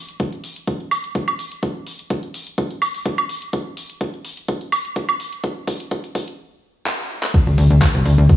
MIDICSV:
0, 0, Header, 1, 3, 480
1, 0, Start_track
1, 0, Tempo, 476190
1, 1641, Time_signature, 4, 2, 24, 8
1, 8434, End_track
2, 0, Start_track
2, 0, Title_t, "Analog synth bass"
2, 0, Program_c, 0, 38
2, 7527, Note_on_c, 0, 38, 87
2, 7610, Note_off_c, 0, 38, 0
2, 7640, Note_on_c, 0, 38, 103
2, 7733, Note_off_c, 0, 38, 0
2, 7767, Note_on_c, 0, 38, 87
2, 7850, Note_off_c, 0, 38, 0
2, 8007, Note_on_c, 0, 36, 88
2, 8090, Note_off_c, 0, 36, 0
2, 8121, Note_on_c, 0, 38, 105
2, 8214, Note_off_c, 0, 38, 0
2, 8247, Note_on_c, 0, 38, 95
2, 8330, Note_off_c, 0, 38, 0
2, 8434, End_track
3, 0, Start_track
3, 0, Title_t, "Drums"
3, 86, Note_on_c, 9, 42, 53
3, 187, Note_off_c, 9, 42, 0
3, 200, Note_on_c, 9, 36, 108
3, 200, Note_on_c, 9, 42, 74
3, 300, Note_off_c, 9, 42, 0
3, 301, Note_off_c, 9, 36, 0
3, 327, Note_on_c, 9, 42, 36
3, 428, Note_off_c, 9, 42, 0
3, 440, Note_on_c, 9, 46, 99
3, 541, Note_off_c, 9, 46, 0
3, 567, Note_on_c, 9, 42, 53
3, 668, Note_off_c, 9, 42, 0
3, 681, Note_on_c, 9, 36, 119
3, 681, Note_on_c, 9, 42, 78
3, 781, Note_off_c, 9, 36, 0
3, 782, Note_off_c, 9, 42, 0
3, 808, Note_on_c, 9, 42, 35
3, 909, Note_off_c, 9, 42, 0
3, 921, Note_on_c, 9, 46, 106
3, 921, Note_on_c, 9, 76, 75
3, 1022, Note_off_c, 9, 46, 0
3, 1022, Note_off_c, 9, 76, 0
3, 1048, Note_on_c, 9, 42, 50
3, 1149, Note_off_c, 9, 42, 0
3, 1161, Note_on_c, 9, 36, 113
3, 1161, Note_on_c, 9, 42, 76
3, 1261, Note_off_c, 9, 36, 0
3, 1262, Note_off_c, 9, 42, 0
3, 1288, Note_on_c, 9, 76, 67
3, 1389, Note_off_c, 9, 76, 0
3, 1401, Note_on_c, 9, 46, 97
3, 1502, Note_off_c, 9, 46, 0
3, 1528, Note_on_c, 9, 42, 52
3, 1629, Note_off_c, 9, 42, 0
3, 1641, Note_on_c, 9, 36, 120
3, 1641, Note_on_c, 9, 42, 82
3, 1742, Note_off_c, 9, 36, 0
3, 1742, Note_off_c, 9, 42, 0
3, 1881, Note_on_c, 9, 46, 109
3, 1981, Note_off_c, 9, 46, 0
3, 2008, Note_on_c, 9, 42, 52
3, 2109, Note_off_c, 9, 42, 0
3, 2120, Note_on_c, 9, 42, 77
3, 2121, Note_on_c, 9, 36, 111
3, 2221, Note_off_c, 9, 42, 0
3, 2222, Note_off_c, 9, 36, 0
3, 2247, Note_on_c, 9, 42, 34
3, 2348, Note_off_c, 9, 42, 0
3, 2361, Note_on_c, 9, 46, 107
3, 2461, Note_off_c, 9, 46, 0
3, 2488, Note_on_c, 9, 42, 53
3, 2588, Note_off_c, 9, 42, 0
3, 2601, Note_on_c, 9, 36, 127
3, 2601, Note_on_c, 9, 42, 75
3, 2701, Note_off_c, 9, 36, 0
3, 2701, Note_off_c, 9, 42, 0
3, 2728, Note_on_c, 9, 42, 36
3, 2829, Note_off_c, 9, 42, 0
3, 2840, Note_on_c, 9, 46, 110
3, 2840, Note_on_c, 9, 76, 79
3, 2941, Note_off_c, 9, 46, 0
3, 2941, Note_off_c, 9, 76, 0
3, 2968, Note_on_c, 9, 46, 64
3, 3069, Note_off_c, 9, 46, 0
3, 3080, Note_on_c, 9, 42, 79
3, 3081, Note_on_c, 9, 36, 125
3, 3181, Note_off_c, 9, 36, 0
3, 3181, Note_off_c, 9, 42, 0
3, 3207, Note_on_c, 9, 76, 70
3, 3308, Note_off_c, 9, 76, 0
3, 3320, Note_on_c, 9, 46, 102
3, 3421, Note_off_c, 9, 46, 0
3, 3447, Note_on_c, 9, 42, 52
3, 3548, Note_off_c, 9, 42, 0
3, 3560, Note_on_c, 9, 42, 78
3, 3561, Note_on_c, 9, 36, 109
3, 3661, Note_off_c, 9, 42, 0
3, 3662, Note_off_c, 9, 36, 0
3, 3800, Note_on_c, 9, 46, 114
3, 3901, Note_off_c, 9, 46, 0
3, 3927, Note_on_c, 9, 42, 53
3, 4028, Note_off_c, 9, 42, 0
3, 4040, Note_on_c, 9, 42, 77
3, 4041, Note_on_c, 9, 36, 94
3, 4141, Note_off_c, 9, 42, 0
3, 4142, Note_off_c, 9, 36, 0
3, 4168, Note_on_c, 9, 42, 35
3, 4269, Note_off_c, 9, 42, 0
3, 4280, Note_on_c, 9, 46, 111
3, 4381, Note_off_c, 9, 46, 0
3, 4408, Note_on_c, 9, 42, 50
3, 4508, Note_off_c, 9, 42, 0
3, 4520, Note_on_c, 9, 42, 71
3, 4521, Note_on_c, 9, 36, 112
3, 4621, Note_off_c, 9, 36, 0
3, 4621, Note_off_c, 9, 42, 0
3, 4648, Note_on_c, 9, 42, 35
3, 4749, Note_off_c, 9, 42, 0
3, 4761, Note_on_c, 9, 46, 115
3, 4761, Note_on_c, 9, 76, 83
3, 4862, Note_off_c, 9, 46, 0
3, 4862, Note_off_c, 9, 76, 0
3, 4888, Note_on_c, 9, 42, 51
3, 4989, Note_off_c, 9, 42, 0
3, 5001, Note_on_c, 9, 36, 108
3, 5001, Note_on_c, 9, 42, 73
3, 5101, Note_off_c, 9, 36, 0
3, 5102, Note_off_c, 9, 42, 0
3, 5128, Note_on_c, 9, 76, 70
3, 5228, Note_off_c, 9, 76, 0
3, 5241, Note_on_c, 9, 46, 106
3, 5342, Note_off_c, 9, 46, 0
3, 5368, Note_on_c, 9, 42, 51
3, 5469, Note_off_c, 9, 42, 0
3, 5481, Note_on_c, 9, 36, 104
3, 5481, Note_on_c, 9, 42, 75
3, 5581, Note_off_c, 9, 36, 0
3, 5582, Note_off_c, 9, 42, 0
3, 5721, Note_on_c, 9, 36, 106
3, 5721, Note_on_c, 9, 46, 114
3, 5821, Note_off_c, 9, 36, 0
3, 5822, Note_off_c, 9, 46, 0
3, 5848, Note_on_c, 9, 42, 49
3, 5949, Note_off_c, 9, 42, 0
3, 5961, Note_on_c, 9, 36, 101
3, 5961, Note_on_c, 9, 42, 78
3, 6061, Note_off_c, 9, 36, 0
3, 6062, Note_off_c, 9, 42, 0
3, 6087, Note_on_c, 9, 42, 35
3, 6188, Note_off_c, 9, 42, 0
3, 6200, Note_on_c, 9, 46, 116
3, 6201, Note_on_c, 9, 36, 111
3, 6301, Note_off_c, 9, 36, 0
3, 6301, Note_off_c, 9, 46, 0
3, 6327, Note_on_c, 9, 42, 49
3, 6428, Note_off_c, 9, 42, 0
3, 6920, Note_on_c, 9, 39, 109
3, 7021, Note_off_c, 9, 39, 0
3, 7287, Note_on_c, 9, 39, 79
3, 7388, Note_off_c, 9, 39, 0
3, 7400, Note_on_c, 9, 42, 79
3, 7400, Note_on_c, 9, 49, 104
3, 7400, Note_on_c, 9, 51, 67
3, 7401, Note_on_c, 9, 36, 127
3, 7501, Note_off_c, 9, 42, 0
3, 7501, Note_off_c, 9, 49, 0
3, 7501, Note_off_c, 9, 51, 0
3, 7502, Note_off_c, 9, 36, 0
3, 7640, Note_on_c, 9, 46, 110
3, 7741, Note_off_c, 9, 46, 0
3, 7768, Note_on_c, 9, 42, 57
3, 7868, Note_off_c, 9, 42, 0
3, 7880, Note_on_c, 9, 42, 83
3, 7880, Note_on_c, 9, 51, 68
3, 7881, Note_on_c, 9, 36, 112
3, 7881, Note_on_c, 9, 39, 127
3, 7981, Note_off_c, 9, 42, 0
3, 7981, Note_off_c, 9, 51, 0
3, 7982, Note_off_c, 9, 36, 0
3, 7982, Note_off_c, 9, 39, 0
3, 8007, Note_on_c, 9, 42, 36
3, 8108, Note_off_c, 9, 42, 0
3, 8120, Note_on_c, 9, 46, 108
3, 8221, Note_off_c, 9, 46, 0
3, 8247, Note_on_c, 9, 42, 55
3, 8348, Note_off_c, 9, 42, 0
3, 8360, Note_on_c, 9, 42, 79
3, 8360, Note_on_c, 9, 51, 65
3, 8361, Note_on_c, 9, 36, 127
3, 8434, Note_off_c, 9, 36, 0
3, 8434, Note_off_c, 9, 42, 0
3, 8434, Note_off_c, 9, 51, 0
3, 8434, End_track
0, 0, End_of_file